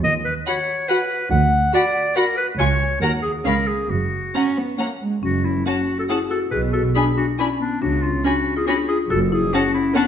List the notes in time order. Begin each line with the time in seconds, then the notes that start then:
0.04 D#2 D#5
0.25 B4
0.46 F#4 C#5 F#5 B5
0.88 F#4 B4 F#5 B5
1.31 D2 F#5
1.74 F#4 D5 F#5 B5
2.16 F#4 A#4 F#5 B5
2.37 B4
2.58 C#2 F4 C#5 G#5 C#6
3.01 D#2 F#4 A#4 F#5 A#5
3.22 G#4
3.45 C#2 C#4 A#4 F5 B5
3.67 G#4
3.89 F#1 F#2 F#4
4.34 C#4 F#5 A#5
4.57 B3
4.79 A#3 C#4 F#5 A#5
5.01 G#3
5.23 F#1 F#2 C#4 F#4
5.45 C#4 E4
5.66 C#4 F#4 F#5 A5
5.98 F#4 A4
6.09 C#4 E4 G#4 F#5 A5
6.30 F#4 A4
6.51 B1 B2 G#4 B4
6.73 F#4 A4
6.95 D4 G#4 G#5 B5
7.17 D4 F#4
7.39 C#4 D4 E4 G#5 B5
7.60 B3 D4
7.81 C#2 C#3 D4 F#4
8.02 C#4 F4
8.24 C#4 D4 F#4 G#5 B5
8.57 F4 G#4
8.67 C#4 D4 F#4 G#5 B5
8.88 F4 G#4
9.10 F#1 F#2 F#4 A4
9.32 E4 G#4
9.53 C#4 F#4 F#5 A5
9.74 C#4 E4
9.95 B3 C#4 D4 F#5 A5